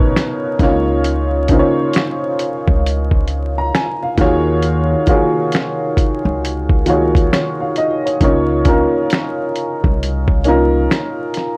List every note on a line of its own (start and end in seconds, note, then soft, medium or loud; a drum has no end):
0.00 0.11 A#1 medium
0.00 0.58 C#3 medium
0.00 0.60 B3 medium
0.00 0.60 D#4 medium
0.00 0.61 A#4 medium
0.00 0.61 B4 medium
0.00 0.62 C#5 medium
0.16 finger snap medium
0.16 snare loud
0.16 closed hi-hat medium
0.59 1.59 C#2 loud
0.59 1.45 C#3 medium
0.59 1.46 A#3 medium
0.59 1.46 D#4 medium
0.59 1.47 F4 medium
0.59 1.47 C#5 loud
0.59 kick loud
0.59 snare soft
0.59 closed hi-hat medium
1.04 closed hi-hat medium
1.48 3.21 C#3 medium
1.48 3.21 A#3 medium
1.48 3.21 D#4 medium
1.48 3.22 F4 medium
1.48 kick medium
1.48 closed hi-hat medium
1.53 1.59 C5 medium
1.59 3.26 C#5 loud
1.93 finger snap medium
1.93 snare loud
1.93 closed hi-hat medium
2.39 closed hi-hat medium
2.68 3.69 C#2 medium
2.68 kick medium
2.86 closed hi-hat medium
3.11 kick medium
3.28 closed hi-hat medium
3.58 3.73 A#5 medium
3.75 4.01 G#5 medium
3.75 finger snap medium
3.75 snare loud
3.75 closed hi-hat medium
4.03 4.45 F5 medium
4.18 4.93 D#2 loud
4.18 5.03 D#3 medium
4.18 5.04 A#3 medium
4.18 5.04 F4 medium
4.18 5.05 F#4 medium
4.18 5.05 G#4 medium
4.18 5.05 C#5 loud
4.18 kick loud
4.18 snare soft
4.18 closed hi-hat medium
4.62 closed hi-hat medium
5.07 6.79 D#3 medium
5.07 6.79 A#3 medium
5.07 6.79 F4 medium
5.07 6.80 F#4 medium
5.07 6.80 G#4 medium
5.07 6.81 C#5 medium
5.07 kick medium
5.07 closed hi-hat medium
5.52 finger snap medium
5.52 snare loud
5.52 closed hi-hat medium
5.97 kick medium
5.97 closed hi-hat medium
6.25 7.27 C#2 medium
6.45 closed hi-hat medium
6.69 kick loud
6.86 8.15 D#3 medium
6.86 8.15 A#3 medium
6.86 8.16 F4 medium
6.86 8.16 F#4 medium
6.86 8.16 G#4 medium
6.86 7.31 C#5 medium
6.86 closed hi-hat medium
7.15 kick loud
7.15 closed hi-hat medium
7.33 7.59 C#5 medium
7.33 finger snap medium
7.33 snare loud
7.33 closed hi-hat medium
7.60 7.76 F5 medium
7.76 8.04 D#5 medium
7.76 closed hi-hat medium
8.05 8.23 C#5 medium
8.05 closed hi-hat medium
8.20 8.82 C#2 medium
8.20 8.63 C#3 medium
8.20 8.64 A#3 medium
8.20 8.64 D#4 medium
8.20 8.65 F4 medium
8.20 8.65 C#5 medium
8.20 kick loud
8.20 closed hi-hat medium
8.65 10.37 A#3 medium
8.65 10.37 C#4 medium
8.65 10.38 D#4 medium
8.65 10.38 F4 medium
8.65 10.39 A#4 medium
8.65 kick medium
8.65 closed hi-hat medium
9.10 finger snap medium
9.10 snare loud
9.10 closed hi-hat medium
9.56 closed hi-hat medium
9.84 10.86 C2 medium
9.84 kick medium
10.03 closed hi-hat medium
10.28 kick medium
10.44 11.57 A#3 medium
10.44 11.57 C#4 medium
10.44 11.57 D#4 medium
10.44 11.57 F4 medium
10.44 closed hi-hat medium
10.48 11.57 A#4 medium
10.91 finger snap medium
10.91 snare loud
10.91 closed hi-hat medium
11.34 snare soft
11.34 closed hi-hat medium